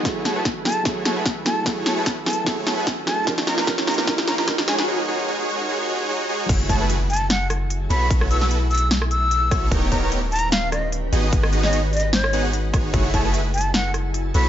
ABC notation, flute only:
X:1
M:4/4
L:1/16
Q:"Swing 16ths" 1/4=149
K:F#dor
V:1 name="Flute"
z2 a a z2 a2 z2 a a z2 a2 | z2 a a z2 a2 z2 a a z2 a2 | z2 ^a a z2 a a z2 a a z2 g g | z16 |
z2 a a z2 a2 f2 z4 b2 | z2 e' e' z2 e'2 z2 e'6 | z2 ^a a z2 a2 ^e2 d2 z4 | z3 d2 z d2 c3 z4 z |
z2 a a z2 a2 f2 z4 b2 |]